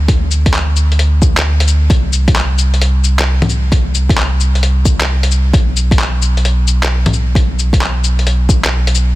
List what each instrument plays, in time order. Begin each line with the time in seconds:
Already playing: sub bass D2
0.08 kick, closed hi-hat
0.31 cabasa
0.46 kick, closed hi-hat
0.54 clap, closed hi-hat
0.76 cabasa
0.92 closed hi-hat
0.99 closed hi-hat
1.22 kick, cabasa
1.37 clap, closed hi-hat
1.60 closed hi-hat
1.68 cabasa
1.90 sub bass C2, kick, closed hi-hat
2.13 cabasa
2.28 kick, closed hi-hat
2.36 clap, closed hi-hat
2.58 cabasa
2.74 closed hi-hat
2.82 closed hi-hat
3.04 cabasa
3.19 clap, closed hi-hat
3.42 closed hi-hat, low bongo
3.49 cabasa
3.72 kick, closed hi-hat
3.95 cabasa
4.09 kick, closed hi-hat
4.18 clap, closed hi-hat
4.40 cabasa
4.55 closed hi-hat
4.63 closed hi-hat
4.85 kick, cabasa
5.01 clap, closed hi-hat
5.23 closed hi-hat
5.31 cabasa
5.53 sub bass B1, kick, closed hi-hat
5.77 cabasa
5.91 kick, closed hi-hat
5.99 clap, closed hi-hat
6.22 cabasa
6.37 closed hi-hat
6.45 closed hi-hat
6.68 cabasa
6.83 clap, closed hi-hat
7.06 closed hi-hat, low bongo
7.13 cabasa
7.35 kick, closed hi-hat
7.59 cabasa
7.73 kick, closed hi-hat
7.82 clap, closed hi-hat
8.04 cabasa
8.19 closed hi-hat
8.27 closed hi-hat
8.49 kick, cabasa
8.64 clap, closed hi-hat
8.87 closed hi-hat
8.95 cabasa